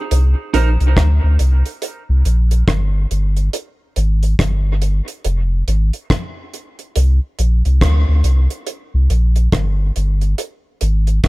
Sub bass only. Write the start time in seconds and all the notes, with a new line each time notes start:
0.11 C2
0.54 A#1
0.81 C2
0.97 D2
1.24 D2
1.40 C2
2.09 C2
2.25 A#1
2.68 G1
3.11 G1
3.97 G#1
4.39 G1
5.25 F1
5.68 G#1
6.96 C2
7.39 A#1
7.66 C2
7.81 D2
8.08 D2
8.24 C2
8.94 C2
9.10 A#1
9.53 G1
9.96 G1
10.82 G#1
11.24 G1